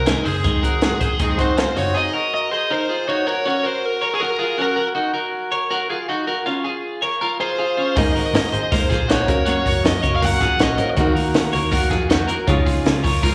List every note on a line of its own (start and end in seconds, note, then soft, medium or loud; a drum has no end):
0.00 0.20 C2 loud
0.00 1.34 C4 medium
0.00 1.35 D#4 medium
0.00 1.36 G#4 medium
0.00 0.26 A#4 medium
0.06 0.26 D#3 medium
0.06 0.26 G#3 medium
0.06 0.26 C4 medium
0.06 0.26 D#4 medium
0.06 0.24 D#4 medium
0.06 0.24 G#4 medium
0.06 snare loud
0.06 closed hi-hat loud
0.25 0.42 F#1 medium
0.25 0.45 G#3 soft
0.25 0.45 C4 medium
0.25 0.44 D#4 medium
0.25 1.53 G#4 medium
0.25 0.43 G#4 medium
0.25 0.44 C5 medium
0.25 open hi-hat medium
0.44 0.89 G#1 loud
0.44 0.64 G#2 medium
0.44 0.64 D#3 medium
0.44 0.64 G#3 medium
0.44 0.63 C4 medium
0.44 0.63 D#4 medium
0.44 0.62 D#4 medium
0.44 0.63 G#4 medium
0.44 kick loud
0.44 closed hi-hat medium
0.63 0.82 G#3 soft
0.63 0.83 C4 soft
0.63 0.82 D#4 soft
0.63 0.99 F#4 medium
0.63 0.99 A#4 medium
0.63 kick medium
0.63 closed hi-hat medium
0.82 1.01 D#3 medium
0.82 1.02 G#3 medium
0.82 1.01 C4 medium
0.82 0.99 D#4 medium
0.82 snare loud
0.82 closed hi-hat medium
1.00 1.17 G#1 medium
1.00 1.21 G#3 medium
1.00 1.21 C4 medium
1.00 1.20 D#4 medium
1.00 1.18 G#4 medium
1.00 1.20 C5 medium
1.00 kick loud
1.00 closed hi-hat medium
1.19 1.36 D#2 medium
1.19 1.39 G#2 medium
1.19 1.40 D#3 medium
1.19 1.40 G#3 medium
1.19 1.40 C4 medium
1.19 1.38 D#4 medium
1.19 1.39 D#4 medium
1.19 1.38 G#4 medium
1.19 kick loud
1.19 closed hi-hat medium
1.37 1.71 G#2 medium
1.37 1.94 C4 medium
1.37 1.95 D#4 soft
1.37 1.57 D#4 medium
1.37 1.58 D#4 medium
1.37 1.57 F#4 medium
1.37 1.95 G#4 medium
1.37 1.77 C5 medium
1.37 1.56 C6 medium
1.37 kick medium
1.37 closed hi-hat medium
1.41 1.59 G#3 soft
1.41 1.59 C4 medium
1.57 1.77 D#3 medium
1.57 1.78 G#3 medium
1.57 1.77 C4 medium
1.57 1.78 C4 medium
1.57 1.76 F4 medium
1.57 1.66 G#5 medium
1.57 snare loud
1.57 closed hi-hat medium
1.61 1.77 D#4 medium
1.66 1.93 F5 medium
1.76 1.93 F#1 medium
1.76 1.97 C4 medium
1.76 1.94 D#4 medium
1.76 1.96 D#4 medium
1.76 1.94 F#4 medium
1.76 1.96 C#5 medium
1.76 open hi-hat medium
1.80 1.97 G#3 medium
1.94 2.14 D#4 medium
1.94 2.14 G#4 loud
1.94 2.33 D#5 loud
2.13 2.50 F#4 medium
2.13 2.49 A#4 medium
2.34 2.72 D#5 loud
2.51 2.71 G#4 medium
2.51 2.70 C5 medium
2.71 2.89 D#4 medium
2.71 2.89 A#4 medium
2.71 3.08 C5 loud
2.89 3.08 F4 medium
2.89 3.07 G#4 medium
3.08 3.26 D#4 medium
3.08 3.26 F#4 medium
3.08 3.26 C#5 loud
3.27 3.44 F#4 medium
3.27 3.46 A#4 medium
3.27 3.47 C#5 loud
3.45 3.65 C#4 medium
3.45 3.63 F#4 medium
3.45 3.66 C#5 loud
3.63 4.00 F#4 medium
3.63 3.99 A#4 medium
3.63 3.86 C5 loud
3.86 4.14 A#4 medium
4.02 4.19 A#4 medium
4.02 4.21 C#5 medium
4.14 4.22 G#4 medium
4.20 4.39 F#4 medium
4.20 4.38 A#4 loud
4.20 4.61 A#4 medium
4.39 4.58 F4 medium
4.39 4.58 G#4 medium
4.58 4.77 C#4 medium
4.58 4.76 F#4 medium
4.58 4.87 A#4 medium
4.76 4.94 F#4 medium
4.76 4.94 A#4 medium
4.95 5.14 D#4 medium
4.95 5.13 F#4 medium
5.14 5.50 F#4 medium
5.14 5.50 A#4 medium
5.52 5.69 A#4 medium
5.52 5.71 C#5 medium
5.71 5.90 F#4 medium
5.71 5.89 A#4 loud
5.90 6.09 F4 medium
5.90 6.08 G#4 medium
6.09 6.27 D#4 medium
6.09 6.27 F#4 medium
6.27 6.46 F#4 medium
6.27 6.46 A#4 medium
6.46 6.65 C#4 medium
6.46 6.64 F4 loud
6.64 7.01 F4 medium
6.64 7.00 G#4 medium
7.02 7.20 A#4 medium
7.02 7.21 C#5 medium
7.21 7.40 F4 medium
7.21 7.40 A#4 loud
7.40 7.58 F4 medium
7.40 7.57 G#4 medium
7.40 7.97 C5 medium
7.58 7.76 F4 medium
7.58 7.78 G#4 medium
7.77 7.97 C#4 medium
7.77 7.97 F4 medium
7.95 8.13 G#1 loud
7.95 8.16 G#3 medium
7.95 8.16 A#3 medium
7.95 9.25 C4 medium
7.95 9.25 D#4 medium
7.95 8.15 D#4 medium
7.95 8.16 D#4 medium
7.95 8.14 G#4 medium
7.95 9.26 G#4 medium
7.95 8.16 G#4 medium
7.95 9.26 A#4 medium
7.95 8.14 C5 medium
7.95 8.32 D#5 loud
7.95 kick loud
7.95 open hi-hat loud
8.15 8.31 G#1 medium
8.15 8.33 D#4 soft
8.15 8.51 F#4 medium
8.15 8.34 G#4 medium
8.15 8.51 A#4 medium
8.15 8.34 C5 medium
8.15 hi-hat pedal medium
8.15 open hi-hat medium
8.34 8.50 G#2 loud
8.34 8.53 A#3 medium
8.34 8.53 D#4 medium
8.34 8.53 G#4 medium
8.34 8.52 C5 medium
8.34 8.73 D#5 medium
8.34 snare loud
8.34 hi-hat pedal medium
8.34 open hi-hat loud
8.52 8.85 G#1 medium
8.52 8.71 D#4 soft
8.52 8.71 G#4 medium
8.52 8.72 G#4 medium
8.52 8.72 C5 medium
8.52 hi-hat pedal medium
8.52 open hi-hat medium
8.72 8.91 G#3 medium
8.72 8.91 A#3 medium
8.72 8.91 D#4 medium
8.72 8.90 D#4 medium
8.72 8.91 G#4 loud
8.72 8.89 A#4 loud
8.72 9.11 C5 medium
8.72 8.90 C5 loud
8.72 kick loud
8.72 hi-hat pedal medium
8.72 open hi-hat loud
8.89 9.28 A#1 medium
8.89 9.09 F4 medium
8.89 9.08 G#4 medium
8.89 9.09 G#4 medium
8.89 9.10 C5 medium
8.89 kick loud
8.89 snare soft
8.89 hi-hat pedal medium
8.89 open hi-hat medium
8.94 9.09 D#4 soft
9.09 9.28 A#3 medium
9.09 9.28 D#4 medium
9.09 9.29 D#4 medium
9.09 9.27 F#4 medium
9.09 9.28 G#4 medium
9.09 9.29 C5 medium
9.09 9.48 C#5 loud
9.09 snare loud
9.09 hi-hat pedal medium
9.09 open hi-hat loud
9.26 9.60 F#1 loud
9.26 10.75 A#3 medium
9.26 10.75 C#4 medium
9.26 9.46 C#4 medium
9.26 9.47 F#4 medium
9.26 10.76 F#4 medium
9.26 9.44 F#4 medium
9.26 9.47 A#4 medium
9.26 10.76 A#4 medium
9.26 kick loud
9.26 hi-hat pedal medium
9.26 open hi-hat medium
9.31 9.45 A#3 soft
9.46 9.66 F#3 medium
9.46 9.66 A#3 medium
9.46 9.66 C#4 medium
9.46 9.65 F#4 loud
9.46 9.65 F#4 medium
9.46 9.67 C#5 loud
9.46 hi-hat pedal medium
9.46 open hi-hat medium
9.65 9.85 F#1 loud
9.65 9.86 A#3 soft
9.65 9.86 C#4 medium
9.65 10.01 F#4 medium
9.65 9.85 F#4 medium
9.65 10.01 A#4 medium
9.65 9.85 C#5 medium
9.65 kick medium
9.65 hi-hat pedal medium
9.65 open hi-hat medium
9.83 10.00 F#2 loud
9.83 10.04 F#3 medium
9.83 10.05 A#3 medium
9.83 10.15 D#5 loud
9.83 snare loud
9.83 hi-hat pedal medium
9.83 open hi-hat loud
9.87 10.04 C#4 medium
9.87 10.03 F#4 medium
10.03 10.36 F#1 medium
10.03 10.23 C#4 soft
10.03 10.23 F#4 medium
10.03 10.20 A#4 medium
10.03 10.22 C#5 medium
10.03 kick loud
10.03 hi-hat pedal medium
10.03 open hi-hat medium
10.07 10.22 A#3 soft
10.16 10.25 F5 loud
10.22 10.41 F#3 loud
10.22 10.42 A#3 medium
10.22 10.42 C#4 medium
10.22 10.41 F#4 medium
10.22 10.41 F#4 loud
10.22 10.40 A#4 loud
10.22 10.62 F#5 loud
10.22 kick loud
10.22 hi-hat pedal medium
10.22 open hi-hat loud
10.41 10.57 G#1 loud
10.41 10.61 A#3 soft
10.41 10.61 C#4 soft
10.41 10.59 F4 medium
10.41 10.60 F#4 medium
10.41 10.60 G#4 loud
10.41 kick medium
10.41 snare soft
10.41 hi-hat pedal medium
10.41 open hi-hat medium
10.59 10.76 A#1 medium
10.59 10.79 F#3 medium
10.59 10.80 A#3 medium
10.59 10.79 C#4 medium
10.59 10.78 F#4 medium
10.59 10.88 D#5 loud
10.59 snare loud
10.59 hi-hat pedal medium
10.59 open hi-hat loud
10.78 10.95 G#1 loud
10.78 10.96 A#3 medium
10.78 10.98 C#4 medium
10.78 10.97 C#4 medium
10.78 10.97 F#4 medium
10.78 10.95 F#4 medium
10.78 10.98 F#4 medium
10.78 10.96 A#4 medium
10.78 10.98 C5 medium
10.78 hi-hat pedal medium
10.78 open hi-hat medium
10.96 11.13 D#2 loud
10.96 11.16 D#3 loud
10.96 11.16 A#3 loud
10.96 12.45 A#3 medium
10.96 11.15 D#4 medium
10.96 11.16 D#4 loud
10.96 12.46 D#4 medium
10.96 11.15 F#4 loud
10.96 12.46 F#4 medium
10.96 kick loud
10.96 hi-hat pedal medium
10.96 open hi-hat medium
11.01 12.46 A#4 loud
11.15 11.32 D#2 loud
11.15 11.33 A#3 medium
11.15 11.34 D#4 medium
11.15 11.51 F#4 medium
11.15 11.35 F#4 medium
11.15 11.51 A#4 medium
11.15 hi-hat pedal medium
11.15 open hi-hat medium
11.33 11.53 D#3 medium
11.33 11.55 D#3 loud
11.33 11.54 A#3 medium
11.33 11.52 D#4 medium
11.33 11.51 F#4 medium
11.33 snare loud
11.33 hi-hat pedal medium
11.33 open hi-hat loud
11.52 11.86 D#2 loud
11.52 11.71 A#3 medium
11.52 11.70 D#4 medium
11.52 11.71 F#4 medium
11.52 11.70 A#4 medium
11.52 11.72 C#5 medium
11.52 hi-hat pedal medium
11.52 open hi-hat medium
11.71 11.91 D#3 loud
11.71 11.91 A#3 loud
11.71 11.90 D#4 loud
11.71 11.91 F#4 medium
11.71 11.89 F#4 loud
11.71 11.90 A#4 loud
11.71 kick loud
11.71 hi-hat pedal medium
11.71 open hi-hat loud
11.90 12.23 F2 medium
11.90 12.09 A#3 medium
11.90 12.10 D#4 medium
11.90 12.09 F4 medium
11.90 12.10 F#4 medium
11.90 12.09 G#4 medium
11.90 kick medium
11.90 snare soft
11.90 hi-hat pedal medium
11.90 open hi-hat medium
12.09 12.29 D#3 medium
12.09 12.29 A#3 medium
12.09 12.28 D#4 medium
12.09 12.29 D#4 medium
12.09 12.27 F#4 medium
12.09 snare loud
12.09 hi-hat pedal medium
12.09 open hi-hat loud
12.27 12.48 A#3 medium
12.27 12.48 D#4 medium
12.27 12.47 F#4 medium
12.27 12.47 A#4 medium
12.27 hi-hat pedal medium
12.27 open hi-hat medium
12.47 12.64 C#2 loud
12.47 12.67 C#3 medium
12.47 12.67 F3 loud
12.47 12.67 G#3 loud
12.47 13.35 C#4 medium
12.47 12.67 C#4 medium
12.47 13.35 D#4 medium
12.47 12.66 D#4 loud
12.47 12.66 F4 medium
12.47 13.35 F4 medium
12.47 12.65 F4 loud
12.47 13.35 G#4 loud
12.47 kick loud
12.47 hi-hat pedal medium
12.47 open hi-hat medium
12.66 12.82 C#2 loud
12.66 12.84 G#3 medium
12.66 12.85 D#4 medium
12.66 12.85 F4 medium
12.66 13.02 F4 medium
12.66 13.02 G#4 medium
12.66 kick loud
12.66 hi-hat pedal medium
12.66 open hi-hat medium
12.84 13.02 C#3 loud
12.84 13.04 F3 medium
12.84 13.04 G#3 medium
12.84 13.03 D#4 medium
12.84 13.01 F4 medium
12.84 snare loud
12.84 hi-hat pedal medium
12.84 open hi-hat loud
13.03 13.35 C#2 medium
13.03 13.21 G#3 medium
13.03 13.22 D#4 medium
13.03 13.22 F4 medium
13.03 13.22 A#4 medium
13.03 13.23 C#5 medium
13.03 kick loud
13.03 hi-hat pedal medium
13.03 open hi-hat medium
13.22 13.35 C#3 loud
13.22 13.35 F3 loud
13.22 13.35 G#3 loud
13.22 13.35 D#4 loud
13.22 13.35 F4 medium
13.22 13.35 F4 loud
13.22 13.35 A#4 loud
13.22 kick loud
13.22 hi-hat pedal medium
13.22 open hi-hat loud